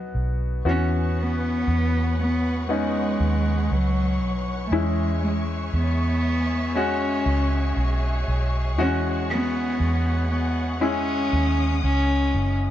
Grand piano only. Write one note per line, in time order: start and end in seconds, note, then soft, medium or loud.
0.00 0.55 B3 medium
0.00 0.55 D#4 medium
0.00 0.56 F#4 medium
0.65 2.14 E3 medium
0.65 2.58 B3 medium
0.65 2.59 C#4 medium
0.65 2.59 F#4 medium
2.69 4.62 B3 medium
2.69 4.63 C#4 medium
2.69 4.63 D#4 medium
4.72 6.21 E3 medium
4.72 6.65 G#3 medium
4.72 6.65 C#4 medium
4.72 6.66 E4 medium
6.75 8.69 G#3 medium
6.75 8.69 C#4 medium
6.75 8.69 F#4 medium
8.78 10.27 E3 medium
8.78 10.72 G#3 medium
8.78 10.72 C#4 medium
8.78 10.72 F#4 medium
10.81 12.71 G#3 medium
10.81 12.71 C#4 medium
10.81 12.71 E4 medium